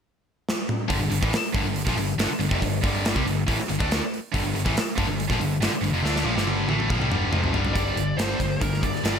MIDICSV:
0, 0, Header, 1, 7, 480
1, 0, Start_track
1, 0, Key_signature, -2, "minor"
1, 0, Tempo, 428266
1, 1011, Time_signature, 4, 2, 24, 8
1, 10301, End_track
2, 0, Start_track
2, 0, Title_t, "Lead electric guitar"
2, 0, Program_c, 0, 29
2, 8674, Note_on_c, 0, 74, 82
2, 9157, Note_on_c, 0, 72, 70
2, 9176, Note_off_c, 0, 74, 0
2, 9645, Note_off_c, 0, 72, 0
2, 9650, Note_on_c, 0, 70, 77
2, 9888, Note_on_c, 0, 74, 74
2, 9898, Note_off_c, 0, 70, 0
2, 10301, Note_off_c, 0, 74, 0
2, 10301, End_track
3, 0, Start_track
3, 0, Title_t, "Distorted electric guitar"
3, 0, Program_c, 1, 30
3, 988, Note_on_c, 1, 43, 82
3, 994, Note_on_c, 1, 50, 86
3, 1112, Note_off_c, 1, 43, 0
3, 1115, Note_off_c, 1, 50, 0
3, 1125, Note_on_c, 1, 43, 70
3, 1130, Note_on_c, 1, 50, 81
3, 1226, Note_off_c, 1, 43, 0
3, 1231, Note_off_c, 1, 50, 0
3, 1239, Note_on_c, 1, 43, 67
3, 1244, Note_on_c, 1, 50, 71
3, 1365, Note_off_c, 1, 43, 0
3, 1367, Note_off_c, 1, 50, 0
3, 1374, Note_on_c, 1, 45, 108
3, 1386, Note_on_c, 1, 52, 119
3, 1485, Note_off_c, 1, 45, 0
3, 1491, Note_off_c, 1, 52, 0
3, 1735, Note_on_c, 1, 43, 82
3, 1747, Note_on_c, 1, 50, 101
3, 1845, Note_off_c, 1, 43, 0
3, 1851, Note_off_c, 1, 50, 0
3, 1871, Note_on_c, 1, 43, 63
3, 1873, Note_on_c, 1, 50, 72
3, 2052, Note_off_c, 1, 43, 0
3, 2053, Note_off_c, 1, 50, 0
3, 2113, Note_on_c, 1, 46, 89
3, 2116, Note_on_c, 1, 53, 95
3, 2214, Note_off_c, 1, 46, 0
3, 2215, Note_off_c, 1, 53, 0
3, 2223, Note_on_c, 1, 43, 66
3, 2226, Note_on_c, 1, 50, 70
3, 2408, Note_off_c, 1, 43, 0
3, 2409, Note_off_c, 1, 50, 0
3, 2449, Note_on_c, 1, 43, 87
3, 2457, Note_on_c, 1, 50, 92
3, 2553, Note_off_c, 1, 43, 0
3, 2566, Note_off_c, 1, 50, 0
3, 2692, Note_on_c, 1, 50, 68
3, 2693, Note_on_c, 1, 43, 63
3, 2810, Note_off_c, 1, 50, 0
3, 2811, Note_off_c, 1, 43, 0
3, 2816, Note_on_c, 1, 41, 72
3, 2821, Note_on_c, 1, 48, 89
3, 2924, Note_off_c, 1, 41, 0
3, 2927, Note_off_c, 1, 48, 0
3, 2944, Note_on_c, 1, 43, 58
3, 2945, Note_on_c, 1, 50, 70
3, 3127, Note_off_c, 1, 43, 0
3, 3128, Note_off_c, 1, 50, 0
3, 3173, Note_on_c, 1, 43, 96
3, 3186, Note_on_c, 1, 55, 94
3, 3187, Note_on_c, 1, 50, 104
3, 3523, Note_off_c, 1, 43, 0
3, 3529, Note_off_c, 1, 50, 0
3, 3529, Note_off_c, 1, 55, 0
3, 3534, Note_on_c, 1, 48, 85
3, 3543, Note_on_c, 1, 55, 98
3, 3643, Note_off_c, 1, 48, 0
3, 3648, Note_off_c, 1, 55, 0
3, 3661, Note_on_c, 1, 50, 66
3, 3664, Note_on_c, 1, 43, 62
3, 3845, Note_off_c, 1, 50, 0
3, 3847, Note_off_c, 1, 43, 0
3, 3884, Note_on_c, 1, 45, 83
3, 3898, Note_on_c, 1, 52, 96
3, 3998, Note_off_c, 1, 45, 0
3, 4005, Note_off_c, 1, 52, 0
3, 4143, Note_on_c, 1, 43, 57
3, 4153, Note_on_c, 1, 50, 67
3, 4233, Note_off_c, 1, 50, 0
3, 4247, Note_on_c, 1, 50, 83
3, 4254, Note_off_c, 1, 43, 0
3, 4265, Note_on_c, 1, 57, 88
3, 4265, Note_on_c, 1, 62, 84
3, 4479, Note_off_c, 1, 50, 0
3, 4488, Note_off_c, 1, 57, 0
3, 4488, Note_off_c, 1, 62, 0
3, 4861, Note_on_c, 1, 43, 74
3, 4863, Note_on_c, 1, 50, 83
3, 4961, Note_off_c, 1, 43, 0
3, 4967, Note_off_c, 1, 50, 0
3, 4974, Note_on_c, 1, 43, 63
3, 4987, Note_on_c, 1, 50, 71
3, 5085, Note_off_c, 1, 43, 0
3, 5086, Note_off_c, 1, 50, 0
3, 5099, Note_on_c, 1, 43, 75
3, 5100, Note_on_c, 1, 50, 69
3, 5207, Note_off_c, 1, 50, 0
3, 5211, Note_on_c, 1, 45, 94
3, 5212, Note_off_c, 1, 43, 0
3, 5216, Note_on_c, 1, 52, 104
3, 5321, Note_off_c, 1, 45, 0
3, 5323, Note_off_c, 1, 52, 0
3, 5581, Note_on_c, 1, 43, 86
3, 5587, Note_on_c, 1, 50, 100
3, 5686, Note_off_c, 1, 43, 0
3, 5688, Note_off_c, 1, 50, 0
3, 5707, Note_on_c, 1, 43, 66
3, 5714, Note_on_c, 1, 50, 71
3, 5888, Note_off_c, 1, 43, 0
3, 5891, Note_off_c, 1, 50, 0
3, 5951, Note_on_c, 1, 46, 85
3, 5962, Note_on_c, 1, 53, 109
3, 6050, Note_off_c, 1, 46, 0
3, 6056, Note_off_c, 1, 53, 0
3, 6058, Note_on_c, 1, 43, 67
3, 6075, Note_on_c, 1, 50, 74
3, 6243, Note_off_c, 1, 43, 0
3, 6251, Note_off_c, 1, 50, 0
3, 6294, Note_on_c, 1, 43, 96
3, 6297, Note_on_c, 1, 50, 93
3, 6402, Note_off_c, 1, 43, 0
3, 6403, Note_off_c, 1, 50, 0
3, 6541, Note_on_c, 1, 43, 66
3, 6548, Note_on_c, 1, 50, 71
3, 6652, Note_off_c, 1, 43, 0
3, 6656, Note_off_c, 1, 50, 0
3, 6656, Note_on_c, 1, 41, 82
3, 6671, Note_on_c, 1, 48, 88
3, 6759, Note_off_c, 1, 48, 0
3, 6763, Note_off_c, 1, 41, 0
3, 6764, Note_on_c, 1, 50, 93
3, 6768, Note_on_c, 1, 57, 101
3, 6780, Note_on_c, 1, 62, 92
3, 6996, Note_off_c, 1, 50, 0
3, 6999, Note_off_c, 1, 57, 0
3, 7003, Note_on_c, 1, 46, 80
3, 7005, Note_off_c, 1, 62, 0
3, 7011, Note_on_c, 1, 53, 99
3, 7116, Note_off_c, 1, 46, 0
3, 7116, Note_on_c, 1, 43, 110
3, 7120, Note_off_c, 1, 53, 0
3, 7130, Note_on_c, 1, 50, 97
3, 7138, Note_on_c, 1, 55, 107
3, 7472, Note_off_c, 1, 43, 0
3, 7480, Note_off_c, 1, 50, 0
3, 7483, Note_off_c, 1, 55, 0
3, 7489, Note_on_c, 1, 45, 84
3, 7498, Note_on_c, 1, 57, 88
3, 7502, Note_on_c, 1, 52, 92
3, 7719, Note_off_c, 1, 45, 0
3, 7724, Note_off_c, 1, 57, 0
3, 7726, Note_off_c, 1, 52, 0
3, 7735, Note_on_c, 1, 46, 86
3, 7746, Note_on_c, 1, 53, 90
3, 7842, Note_off_c, 1, 46, 0
3, 7848, Note_off_c, 1, 53, 0
3, 7852, Note_on_c, 1, 48, 84
3, 7862, Note_on_c, 1, 55, 100
3, 7961, Note_off_c, 1, 48, 0
3, 7966, Note_off_c, 1, 55, 0
3, 7974, Note_on_c, 1, 43, 91
3, 7979, Note_on_c, 1, 50, 85
3, 7991, Note_on_c, 1, 55, 96
3, 8202, Note_off_c, 1, 43, 0
3, 8205, Note_off_c, 1, 50, 0
3, 8210, Note_on_c, 1, 41, 84
3, 8211, Note_off_c, 1, 55, 0
3, 8215, Note_on_c, 1, 53, 102
3, 8217, Note_on_c, 1, 48, 96
3, 8441, Note_off_c, 1, 41, 0
3, 8443, Note_off_c, 1, 53, 0
3, 8444, Note_off_c, 1, 48, 0
3, 8446, Note_on_c, 1, 43, 86
3, 8455, Note_on_c, 1, 50, 78
3, 8467, Note_on_c, 1, 55, 91
3, 8679, Note_off_c, 1, 43, 0
3, 8683, Note_off_c, 1, 50, 0
3, 8689, Note_off_c, 1, 55, 0
3, 8697, Note_on_c, 1, 43, 77
3, 8706, Note_on_c, 1, 50, 73
3, 8715, Note_on_c, 1, 55, 83
3, 8918, Note_off_c, 1, 43, 0
3, 8922, Note_off_c, 1, 50, 0
3, 8926, Note_off_c, 1, 55, 0
3, 8935, Note_on_c, 1, 43, 63
3, 8945, Note_on_c, 1, 50, 70
3, 9147, Note_off_c, 1, 43, 0
3, 9152, Note_off_c, 1, 50, 0
3, 9173, Note_on_c, 1, 43, 69
3, 9187, Note_on_c, 1, 55, 77
3, 9190, Note_on_c, 1, 50, 82
3, 9397, Note_off_c, 1, 43, 0
3, 9404, Note_off_c, 1, 55, 0
3, 9405, Note_off_c, 1, 50, 0
3, 9424, Note_on_c, 1, 43, 75
3, 9427, Note_on_c, 1, 50, 69
3, 9633, Note_off_c, 1, 43, 0
3, 9634, Note_off_c, 1, 50, 0
3, 9659, Note_on_c, 1, 43, 66
3, 9663, Note_on_c, 1, 50, 66
3, 9871, Note_off_c, 1, 43, 0
3, 9873, Note_off_c, 1, 50, 0
3, 9895, Note_on_c, 1, 50, 64
3, 9900, Note_on_c, 1, 43, 56
3, 10110, Note_off_c, 1, 50, 0
3, 10112, Note_off_c, 1, 43, 0
3, 10135, Note_on_c, 1, 50, 77
3, 10138, Note_on_c, 1, 43, 73
3, 10148, Note_on_c, 1, 55, 86
3, 10301, Note_off_c, 1, 43, 0
3, 10301, Note_off_c, 1, 50, 0
3, 10301, Note_off_c, 1, 55, 0
3, 10301, End_track
4, 0, Start_track
4, 0, Title_t, "Picked electric bass"
4, 0, Program_c, 2, 34
4, 1007, Note_on_c, 2, 31, 100
4, 1108, Note_off_c, 2, 31, 0
4, 1115, Note_on_c, 2, 31, 86
4, 1229, Note_off_c, 2, 31, 0
4, 1236, Note_on_c, 2, 31, 81
4, 1354, Note_off_c, 2, 31, 0
4, 1378, Note_on_c, 2, 33, 97
4, 1475, Note_off_c, 2, 33, 0
4, 1732, Note_on_c, 2, 31, 80
4, 1831, Note_off_c, 2, 31, 0
4, 1837, Note_on_c, 2, 31, 73
4, 2066, Note_off_c, 2, 31, 0
4, 2094, Note_on_c, 2, 34, 80
4, 2190, Note_off_c, 2, 34, 0
4, 2197, Note_on_c, 2, 31, 72
4, 2421, Note_off_c, 2, 31, 0
4, 2428, Note_on_c, 2, 31, 82
4, 2549, Note_off_c, 2, 31, 0
4, 2682, Note_on_c, 2, 31, 76
4, 2797, Note_off_c, 2, 31, 0
4, 2817, Note_on_c, 2, 29, 90
4, 2924, Note_off_c, 2, 29, 0
4, 2937, Note_on_c, 2, 31, 91
4, 3155, Note_off_c, 2, 31, 0
4, 3183, Note_on_c, 2, 31, 92
4, 3510, Note_off_c, 2, 31, 0
4, 3539, Note_on_c, 2, 36, 93
4, 3639, Note_off_c, 2, 36, 0
4, 3646, Note_on_c, 2, 31, 70
4, 3869, Note_off_c, 2, 31, 0
4, 3900, Note_on_c, 2, 33, 93
4, 4005, Note_off_c, 2, 33, 0
4, 4141, Note_on_c, 2, 31, 67
4, 4246, Note_off_c, 2, 31, 0
4, 4262, Note_on_c, 2, 38, 76
4, 4478, Note_off_c, 2, 38, 0
4, 4865, Note_on_c, 2, 31, 104
4, 4967, Note_off_c, 2, 31, 0
4, 4979, Note_on_c, 2, 31, 80
4, 5084, Note_off_c, 2, 31, 0
4, 5102, Note_on_c, 2, 31, 78
4, 5206, Note_off_c, 2, 31, 0
4, 5222, Note_on_c, 2, 33, 87
4, 5326, Note_off_c, 2, 33, 0
4, 5574, Note_on_c, 2, 31, 94
4, 5677, Note_off_c, 2, 31, 0
4, 5684, Note_on_c, 2, 31, 77
4, 5907, Note_off_c, 2, 31, 0
4, 5936, Note_on_c, 2, 34, 87
4, 6027, Note_off_c, 2, 34, 0
4, 6033, Note_on_c, 2, 31, 75
4, 6261, Note_off_c, 2, 31, 0
4, 6274, Note_on_c, 2, 31, 93
4, 6390, Note_off_c, 2, 31, 0
4, 6518, Note_on_c, 2, 31, 79
4, 6627, Note_off_c, 2, 31, 0
4, 6634, Note_on_c, 2, 29, 100
4, 6747, Note_off_c, 2, 29, 0
4, 6753, Note_on_c, 2, 38, 109
4, 6981, Note_off_c, 2, 38, 0
4, 6991, Note_on_c, 2, 34, 97
4, 7109, Note_off_c, 2, 34, 0
4, 7122, Note_on_c, 2, 31, 90
4, 7457, Note_off_c, 2, 31, 0
4, 7485, Note_on_c, 2, 33, 85
4, 7708, Note_off_c, 2, 33, 0
4, 7736, Note_on_c, 2, 34, 85
4, 7836, Note_off_c, 2, 34, 0
4, 7843, Note_on_c, 2, 36, 85
4, 7955, Note_off_c, 2, 36, 0
4, 7969, Note_on_c, 2, 31, 85
4, 8190, Note_off_c, 2, 31, 0
4, 8201, Note_on_c, 2, 29, 84
4, 8427, Note_off_c, 2, 29, 0
4, 8436, Note_on_c, 2, 31, 79
4, 8664, Note_off_c, 2, 31, 0
4, 8686, Note_on_c, 2, 31, 87
4, 8859, Note_off_c, 2, 31, 0
4, 8922, Note_on_c, 2, 31, 77
4, 9097, Note_off_c, 2, 31, 0
4, 9162, Note_on_c, 2, 31, 82
4, 9337, Note_off_c, 2, 31, 0
4, 9412, Note_on_c, 2, 31, 74
4, 9584, Note_off_c, 2, 31, 0
4, 9656, Note_on_c, 2, 31, 73
4, 10000, Note_off_c, 2, 31, 0
4, 10126, Note_on_c, 2, 31, 81
4, 10301, Note_off_c, 2, 31, 0
4, 10301, End_track
5, 0, Start_track
5, 0, Title_t, "Muted distorted electric guitar strokes"
5, 1497, Note_on_c, 9, 29, 53
5, 1609, Note_off_c, 9, 29, 0
5, 2566, Note_on_c, 9, 29, 54
5, 2678, Note_off_c, 9, 29, 0
5, 4022, Note_on_c, 9, 29, 57
5, 4135, Note_off_c, 9, 29, 0
5, 5358, Note_on_c, 9, 29, 50
5, 5470, Note_off_c, 9, 29, 0
5, 6430, Note_on_c, 9, 29, 53
5, 6542, Note_off_c, 9, 29, 0
5, 10301, End_track
6, 0, Start_track
6, 0, Title_t, "Muted picked electric bass strokes"
6, 1481, Note_on_c, 9, 29, 37
6, 1593, Note_off_c, 9, 29, 0
6, 2557, Note_on_c, 9, 29, 38
6, 2669, Note_off_c, 9, 29, 0
6, 4021, Note_on_c, 9, 29, 42
6, 4133, Note_off_c, 9, 29, 0
6, 5341, Note_on_c, 9, 29, 41
6, 5453, Note_off_c, 9, 29, 0
6, 10301, End_track
7, 0, Start_track
7, 0, Title_t, "Drums"
7, 544, Note_on_c, 9, 38, 68
7, 656, Note_off_c, 9, 38, 0
7, 774, Note_on_c, 9, 47, 81
7, 886, Note_off_c, 9, 47, 0
7, 1010, Note_on_c, 9, 36, 90
7, 1014, Note_on_c, 9, 46, 68
7, 1122, Note_off_c, 9, 36, 0
7, 1126, Note_off_c, 9, 46, 0
7, 1250, Note_on_c, 9, 46, 67
7, 1362, Note_off_c, 9, 46, 0
7, 1374, Note_on_c, 9, 36, 104
7, 1486, Note_off_c, 9, 36, 0
7, 1493, Note_on_c, 9, 46, 92
7, 1501, Note_on_c, 9, 38, 117
7, 1605, Note_off_c, 9, 46, 0
7, 1613, Note_off_c, 9, 38, 0
7, 1729, Note_on_c, 9, 46, 56
7, 1732, Note_on_c, 9, 36, 114
7, 1841, Note_off_c, 9, 46, 0
7, 1844, Note_off_c, 9, 36, 0
7, 1971, Note_on_c, 9, 46, 80
7, 2083, Note_off_c, 9, 46, 0
7, 2093, Note_on_c, 9, 36, 91
7, 2105, Note_on_c, 9, 38, 28
7, 2205, Note_off_c, 9, 36, 0
7, 2215, Note_on_c, 9, 46, 61
7, 2217, Note_off_c, 9, 38, 0
7, 2327, Note_off_c, 9, 46, 0
7, 2458, Note_on_c, 9, 46, 91
7, 2466, Note_on_c, 9, 38, 103
7, 2570, Note_off_c, 9, 46, 0
7, 2578, Note_off_c, 9, 38, 0
7, 2698, Note_on_c, 9, 46, 59
7, 2810, Note_off_c, 9, 46, 0
7, 2816, Note_on_c, 9, 36, 112
7, 2928, Note_off_c, 9, 36, 0
7, 2939, Note_on_c, 9, 36, 86
7, 2946, Note_on_c, 9, 46, 79
7, 3051, Note_off_c, 9, 36, 0
7, 3058, Note_off_c, 9, 46, 0
7, 3180, Note_on_c, 9, 36, 115
7, 3187, Note_on_c, 9, 46, 60
7, 3292, Note_off_c, 9, 36, 0
7, 3299, Note_off_c, 9, 46, 0
7, 3421, Note_on_c, 9, 46, 83
7, 3429, Note_on_c, 9, 38, 115
7, 3533, Note_off_c, 9, 46, 0
7, 3541, Note_off_c, 9, 38, 0
7, 3542, Note_on_c, 9, 36, 107
7, 3654, Note_off_c, 9, 36, 0
7, 3670, Note_on_c, 9, 46, 58
7, 3782, Note_off_c, 9, 46, 0
7, 3901, Note_on_c, 9, 36, 96
7, 3904, Note_on_c, 9, 46, 76
7, 4013, Note_off_c, 9, 36, 0
7, 4016, Note_off_c, 9, 46, 0
7, 4029, Note_on_c, 9, 38, 31
7, 4139, Note_on_c, 9, 46, 58
7, 4142, Note_off_c, 9, 38, 0
7, 4251, Note_off_c, 9, 46, 0
7, 4264, Note_on_c, 9, 36, 118
7, 4376, Note_off_c, 9, 36, 0
7, 4386, Note_on_c, 9, 46, 68
7, 4394, Note_on_c, 9, 38, 116
7, 4498, Note_off_c, 9, 46, 0
7, 4506, Note_off_c, 9, 38, 0
7, 4637, Note_on_c, 9, 46, 49
7, 4749, Note_off_c, 9, 46, 0
7, 4866, Note_on_c, 9, 36, 98
7, 4875, Note_on_c, 9, 46, 67
7, 4978, Note_off_c, 9, 36, 0
7, 4987, Note_off_c, 9, 46, 0
7, 5110, Note_on_c, 9, 46, 60
7, 5222, Note_off_c, 9, 46, 0
7, 5222, Note_on_c, 9, 36, 103
7, 5334, Note_off_c, 9, 36, 0
7, 5346, Note_on_c, 9, 46, 86
7, 5354, Note_on_c, 9, 38, 122
7, 5458, Note_off_c, 9, 46, 0
7, 5466, Note_off_c, 9, 38, 0
7, 5579, Note_on_c, 9, 36, 109
7, 5585, Note_on_c, 9, 46, 60
7, 5691, Note_off_c, 9, 36, 0
7, 5697, Note_off_c, 9, 46, 0
7, 5826, Note_on_c, 9, 46, 78
7, 5938, Note_off_c, 9, 46, 0
7, 5938, Note_on_c, 9, 36, 93
7, 5950, Note_on_c, 9, 38, 31
7, 6050, Note_off_c, 9, 36, 0
7, 6062, Note_off_c, 9, 38, 0
7, 6065, Note_on_c, 9, 46, 59
7, 6177, Note_off_c, 9, 46, 0
7, 6301, Note_on_c, 9, 46, 92
7, 6309, Note_on_c, 9, 38, 104
7, 6413, Note_off_c, 9, 46, 0
7, 6421, Note_off_c, 9, 38, 0
7, 6545, Note_on_c, 9, 46, 55
7, 6657, Note_off_c, 9, 46, 0
7, 6786, Note_on_c, 9, 38, 58
7, 6898, Note_off_c, 9, 38, 0
7, 6907, Note_on_c, 9, 38, 59
7, 7019, Note_off_c, 9, 38, 0
7, 7146, Note_on_c, 9, 38, 56
7, 7252, Note_on_c, 9, 48, 69
7, 7259, Note_off_c, 9, 38, 0
7, 7364, Note_off_c, 9, 48, 0
7, 7494, Note_on_c, 9, 48, 79
7, 7606, Note_off_c, 9, 48, 0
7, 7621, Note_on_c, 9, 47, 64
7, 7733, Note_off_c, 9, 47, 0
7, 7736, Note_on_c, 9, 36, 87
7, 7848, Note_off_c, 9, 36, 0
7, 7863, Note_on_c, 9, 47, 67
7, 7975, Note_off_c, 9, 47, 0
7, 7976, Note_on_c, 9, 45, 86
7, 8088, Note_off_c, 9, 45, 0
7, 8211, Note_on_c, 9, 45, 94
7, 8323, Note_off_c, 9, 45, 0
7, 8335, Note_on_c, 9, 43, 70
7, 8447, Note_off_c, 9, 43, 0
7, 8451, Note_on_c, 9, 43, 97
7, 8563, Note_off_c, 9, 43, 0
7, 8570, Note_on_c, 9, 43, 89
7, 8682, Note_off_c, 9, 43, 0
7, 8692, Note_on_c, 9, 36, 97
7, 8694, Note_on_c, 9, 42, 72
7, 8804, Note_off_c, 9, 36, 0
7, 8806, Note_off_c, 9, 42, 0
7, 8936, Note_on_c, 9, 42, 70
7, 9048, Note_off_c, 9, 42, 0
7, 9179, Note_on_c, 9, 42, 86
7, 9187, Note_on_c, 9, 38, 117
7, 9291, Note_off_c, 9, 42, 0
7, 9299, Note_off_c, 9, 38, 0
7, 9414, Note_on_c, 9, 36, 73
7, 9422, Note_on_c, 9, 42, 60
7, 9527, Note_off_c, 9, 36, 0
7, 9535, Note_off_c, 9, 42, 0
7, 9656, Note_on_c, 9, 36, 105
7, 9664, Note_on_c, 9, 42, 79
7, 9768, Note_off_c, 9, 36, 0
7, 9776, Note_off_c, 9, 42, 0
7, 9793, Note_on_c, 9, 38, 30
7, 9897, Note_on_c, 9, 36, 79
7, 9902, Note_on_c, 9, 42, 62
7, 9905, Note_off_c, 9, 38, 0
7, 10009, Note_off_c, 9, 36, 0
7, 10014, Note_off_c, 9, 42, 0
7, 10037, Note_on_c, 9, 38, 31
7, 10142, Note_on_c, 9, 42, 82
7, 10149, Note_off_c, 9, 38, 0
7, 10150, Note_on_c, 9, 38, 109
7, 10254, Note_off_c, 9, 42, 0
7, 10262, Note_off_c, 9, 38, 0
7, 10301, End_track
0, 0, End_of_file